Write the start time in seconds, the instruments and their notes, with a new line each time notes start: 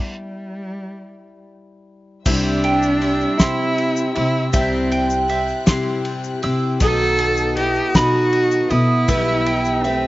Already playing: cello G3, steel-string acoustic guitar G3 E4
2.25 upright piano C2 C3 G3 C4 E4 C5 E5, upright bass C2, twelve-string acoustic guitar C3 G3 C4 E4 G4, french horn G3, cello D4, string section C5 E5 G5 E6, mandolin E5, kick, crash, shaker
2.64 mandolin G5, ride, shaker
2.82 shaker
3.01 twelve-string acoustic guitar G3 C4 E4 G4, mandolin E5, ride, shaker
3.21 shaker
3.38 upright bass C3, twelve-string acoustic guitar C3 G3 C4 E4 G4, french horn C4, cello E4, mandolin C6, kick, snare, ride, shaker
3.78 ride
3.96 shaker
4.15 upright bass C3, french horn C4, twelve-string acoustic guitar C4 E4 G4, cello E4, mandolin E6, ride
4.52 upright piano C2 C3 G3 C4 E4 C5 G5, upright bass C2, twelve-string acoustic guitar C3 G3 C4 E4 G4, french horn G3, cello C4, mandolin E5, string section F#6, kick, ride, shaker
4.91 mandolin G5, ride, shaker
5.10 shaker
5.28 twelve-string acoustic guitar G3 C4 E4 G4, mandolin E5, ride, shaker
5.48 shaker
5.66 upright bass C3, twelve-string acoustic guitar C3 G3 C4 E4 G4, mandolin C6, kick, snare, ride, shaker
6.05 ride
6.24 shaker
6.42 upright bass C3, twelve-string acoustic guitar C4 E4 G4, mandolin E6, ride
6.80 upright bass B1, upright piano B1 B2 A3 B3 A4 D#5, twelve-string acoustic guitar B2 D#3 F#3 B3 D#4 A4, french horn F#4, cello A4, string section B4 F#5 A5 D#6, mandolin D#5, kick, ride, shaker
7.18 mandolin A5, ride, shaker
7.37 shaker
7.56 twelve-string acoustic guitar B3 A4, french horn E4, cello G4, mandolin D#5, ride, shaker
7.76 shaker
7.94 upright bass B2, twelve-string acoustic guitar B2 D#3 F#3 B3 D#4 A4, french horn D#4, cello F#4, mandolin B5, kick, snare, ride, shaker
8.33 ride
8.51 shaker
8.70 upright bass B2, twelve-string acoustic guitar F#3 B3 A4, french horn B3, cello E4, mandolin D#6, ride
9.08 upright bass B1, upright piano B1 G3 E4 B4 E5, twelve-string acoustic guitar B2 E3 B3 E4 G4 B4, string section E5 G5 E6, mandolin E5, kick, ride, shaker
9.46 mandolin G5, ride
9.65 shaker
9.84 french horn A3, cello C4, twelve-string acoustic guitar E4 G4 B4, mandolin E5, ride